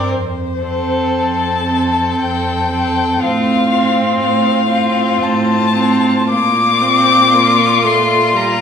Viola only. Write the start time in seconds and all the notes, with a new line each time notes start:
0.63 C4
1.69 C4
2.71 C4
3.20 C4
3.70 C4
4.70 C4
5.74 C4
6.29 A#3
6.82 C4
7.34 A#3
7.84 A3
8.35 G3